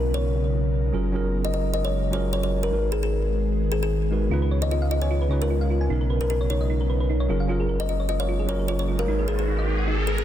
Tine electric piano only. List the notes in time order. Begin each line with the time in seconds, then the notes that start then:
Already playing: B2 B3 C#4 D#4 A#4
0.93 F#3 C#4 F4 G#4 A#4
1.12 F#3 C#4 F4 G#4 A#4
2.11 F#3 C#4 F4 G#4
2.15 A#4
2.71 G#3 D#4 F#4 A#4
2.75 B4
4.11 G#3 D#4 F#4 A#4 B4
4.30 C#3 C#4 D#4 F4
4.34 B4
5.29 C#3 C#4 D#4 F4 B4
5.88 B2 B3 C#4 D#4
5.92 A#4
7.28 F#3 C#4 F4 G#4 A#4
7.47 F#3 C#4 F4 G#4 A#4
8.46 F#3 C#4 F4 G#4 A#4
9.06 G#3 D#4 F#4 A#4 B4